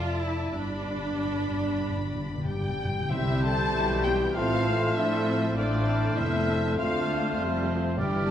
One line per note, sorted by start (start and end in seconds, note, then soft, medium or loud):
0.00 0.50 F1 medium
0.00 0.50 F2 medium
0.00 0.22 F4 medium
0.00 0.52 D5 medium
0.00 0.53 E5 medium
0.00 0.52 A5 medium
0.22 0.54 E4 medium
0.53 2.86 G1 medium
0.53 2.86 G2 medium
0.53 0.60 G2 soft
0.53 2.46 D4 medium
0.53 2.86 D5 medium
0.53 2.46 B5 medium
0.69 0.76 G2 soft
0.77 0.84 G2 soft
0.85 0.92 G2 soft
0.93 1.00 G2 soft
1.08 1.15 G2 soft
1.16 1.23 G2 soft
1.24 1.30 G2 soft
1.31 1.39 G2 soft
1.40 1.47 G2 soft
1.48 1.56 G2 soft
1.57 1.64 G2 soft
1.65 1.71 G2 soft
1.72 1.79 G2 soft
1.80 1.87 G2 soft
1.89 1.95 G2 medium
1.96 2.03 G2 soft
2.04 2.12 G2 soft
2.13 2.20 G2 medium
2.21 2.28 G2 medium
2.29 2.36 G2 medium
2.37 2.43 G2 medium
2.45 2.51 G2 medium
2.45 3.13 G4 medium
2.45 3.07 G5 medium
2.53 2.60 G2 medium
2.61 2.67 G2 medium
2.69 2.75 G2 medium
2.77 2.83 G2 medium
2.85 2.91 G2 medium
2.92 2.99 G2 medium
3.00 3.08 G2 medium
3.10 3.70 C2 medium
3.10 4.01 C3 medium
3.10 3.71 C3 medium
3.10 3.70 G3 medium
3.10 4.38 G3 medium
3.10 4.32 G3 medium
3.10 3.70 C4 medium
3.10 7.95 C4 medium
3.10 4.32 E4 medium
3.10 3.46 E4 medium
3.10 3.70 G4 medium
3.10 4.31 C5 medium
3.10 3.43 E5 medium
3.10 4.31 G6 medium
3.43 4.05 A4 medium
3.43 4.04 A5 loud
3.74 4.34 B1 medium
3.74 4.35 B2 medium
3.74 4.95 E3 medium
3.74 4.05 G3 medium
3.74 4.34 G4 medium
4.05 4.36 B3 medium
4.05 4.35 G4 medium
4.05 4.36 G5 medium
4.35 4.95 A1 medium
4.35 4.95 A2 medium
4.35 7.94 A3 medium
4.35 5.57 A3 medium
4.35 4.96 C4 medium
4.35 4.66 C4 medium
4.35 4.99 F4 medium
4.35 4.95 A4 medium
4.35 5.54 C5 medium
4.35 4.95 F5 medium
4.35 5.55 F6 medium
4.68 4.97 A3 medium
4.96 5.55 A2 medium
4.96 5.57 F3 medium
4.96 5.55 A3 medium
4.96 5.56 C4 medium
4.96 5.26 D4 medium
4.96 5.56 E4 medium
4.96 5.56 A4 medium
4.96 5.56 E5 medium
5.27 5.56 C4 medium
5.55 6.16 A1 medium
5.55 6.16 A2 medium
5.55 6.16 A3 medium
5.55 6.76 A3 medium
5.55 6.16 C4 medium
5.55 6.18 D4 medium
5.55 5.86 F4 medium
5.55 6.76 C5 medium
5.55 6.16 D5 medium
5.55 6.76 F6 medium
5.87 6.17 E4 medium
6.16 6.78 F1 medium
6.16 6.78 F2 medium
6.16 6.48 A3 medium
6.16 6.48 B3 medium
6.16 6.77 D4 medium
6.16 6.78 E4 medium
6.16 6.78 E5 medium
6.49 7.39 A3 medium
6.77 7.38 D2 medium
6.77 7.99 A3 medium
6.77 7.08 C4 medium
6.77 7.39 D4 medium
6.77 7.37 F4 medium
6.77 7.96 C5 medium
6.77 7.37 F5 medium
6.77 7.68 F6 medium
7.08 7.98 F4 medium
7.38 7.97 F1 medium
7.38 7.97 F2 medium
7.38 7.68 G3 medium
7.38 7.98 C4 medium
7.69 7.98 F3 medium
7.97 8.31 G1 medium
7.97 8.31 G2 medium
7.97 8.31 E3 medium
7.97 8.31 G3 medium
7.97 8.28 G3 medium
7.97 8.31 G3 medium
7.97 8.31 D4 medium
7.97 8.31 E4 medium
7.97 8.31 G4 medium
7.97 8.31 D5 medium
7.97 8.31 F6 medium
8.27 8.31 A4 medium
8.27 8.31 A5 medium